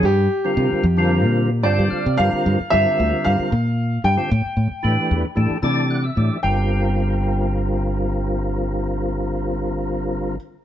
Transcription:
<<
  \new Staff \with { instrumentName = "Grand piano" } { \time 4/4 \key g \dorian \tempo 4 = 113 g'2. d''4 | f''4 e''4 f''4. g''8~ | g''2. r4 | g''1~ |
g''1 | }
  \new Staff \with { instrumentName = "Tonewheel organ" } { \time 4/4 \key g \dorian << { r2. g''8 f''8 | r1 | r2 r8 a''8 fis''16 e''8. | r1 |
r1 | } \\ { r8. <d g c' f' bes'>8. r16 <d g c' f' bes'>4 r16 <d g c' f' a'>8. r16 | <d g c' f' bes'>8. r16 <d g c' f' bes'>4. r4 r16 <d g c' f' a'>16 | r4 <e a d' g' b'>8. r16 <e a d' g' a'>8 <e a d' g' d''>8. r16 <e a d' g' d''>8 | <d g c' f' bes'>1~ |
<d g c' f' bes'>1 | } >> }
  \new Staff \with { instrumentName = "Fingered electric bass" } { \clef bass \time 4/4 \key g \dorian g,8 r8 c16 r16 f,8. bes,8. g,16 g,16 r16 c16 | g,16 r16 g,16 r16 g,16 r16 d,16 r16 g,16 r16 bes,4 g,16 r16 | a,16 r16 a,16 r16 a,16 r16 e,16 r16 a,16 r16 c4 a,16 r16 | g,,1~ |
g,,1 | }
>>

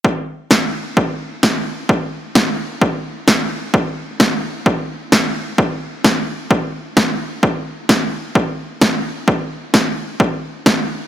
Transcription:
\new DrumStaff \with { instrumentName = "Drums" } \drummode { \time 4/4 \tempo 4 = 130 bd4 <bd sn>4 bd4 <bd sn>4 | bd4 <bd sn>4 bd4 <bd sn>4 | bd4 <bd sn>4 bd4 <bd sn>4 | bd4 <bd sn>4 bd4 <bd sn>4 |
bd4 <bd sn>4 bd4 <bd sn>4 | bd4 <bd sn>4 bd4 <bd sn>4 | }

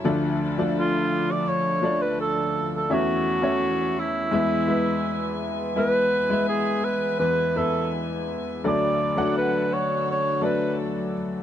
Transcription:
<<
  \new Staff \with { instrumentName = "Cor anglais" } { \time 4/4 \key d \lydian \tempo 4 = 84 r4 f'8. d''16 cis''8. b'16 a'8. a'16 | fis'4. e'2 r8 | b'4 gis'8 b'8 b'8 a'8 r4 | d''4 b'8 cis''8 cis''8 b'8 r4 | }
  \new Staff \with { instrumentName = "String section" } { \time 4/4 \key d \lydian << { <d' a'>1 | <cis' a'>2 <b gis''>2~ | <b gis''>1 | <d' a'>1 | } \\ { f1 | e1~ | e1 | fis1 | } >> }
  \new Staff \with { instrumentName = "Upright piano" } { \time 4/4 \key d \lydian <f a d' a' d''>8 r16 <f a d' a' d''>4~ <f a d' a' d''>16 r8 <f a d' a' d''>4 r8 | <a cis' e' cis'' e''>8 r16 <a cis' e' cis'' e''>4~ <a cis' e' cis'' e''>16 <gis b e' b' e''>8 <gis b e' b' e''>4 r8 | <gis b e' b' e''>8 r16 <gis b e' b' e''>4~ <gis b e' b' e''>16 r8 <b e' b' e''>4 r8 | <fis a d' a' d''>8 r16 <fis a d' a' fis''>4~ <fis a d' a' fis''>16 r8 <fis a d' a' d''>4 r8 | }
  \new Staff \with { instrumentName = "Upright piano" } { \clef bass \time 4/4 \key d \lydian <d, d>1 | <e, e>2 <e, e>2~ | <e, e>2 <e, e>2 | <d, d>1 | }
>>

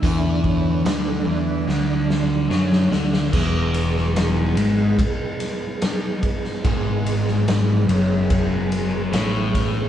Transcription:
<<
  \new Staff \with { instrumentName = "Tonewheel organ" } { \time 4/4 \key e \mixolydian \tempo 4 = 72 e''16 d''16 cis''8 b'16 a'16 d''4. r4 | <e gis b gis' b'>1~ | <e gis b gis' b'>1 | }
  \new Staff \with { instrumentName = "Tonewheel organ" } { \time 4/4 \key e \mixolydian <d a d'>8 <d a d'>2.~ <d a d'>8 | r1 | r1 | }
  \new Staff \with { instrumentName = "Distorted electric guitar" } { \clef bass \time 4/4 \key e \mixolydian e4 d8 e8 d4 fis8 d8 | e,4. gis,8 r2 | gis,4. fis,4. a,4 | }
  \new Staff \with { instrumentName = "Picked electric bass" } { \clef bass \time 4/4 \key e \mixolydian e,4 d,8 e,8 d,4 fis,8 d,8 | e,,4. gis,,8 r2 | gis,,4. fis,,4. a,,4 | }
  \new DrumStaff \with { instrumentName = "Drums" } \drummode { \time 4/4 <hh bd>8 bd8 <hh sn>4 sn8 sn8 sn16 sn16 sn16 sn16 | <cymc bd>8 cymr16 sn16 <cymr sn>8 cymr8 <bd cymr>8 <cymr sn>8 <cymr sn>8 <bd cymr>16 sn16 | <bd cymr>8 cymr16 sn16 <cymr sn>8 cymr8 <bd cymr>8 cymr8 <cymr sn>8 <bd cymr>8 | }
>>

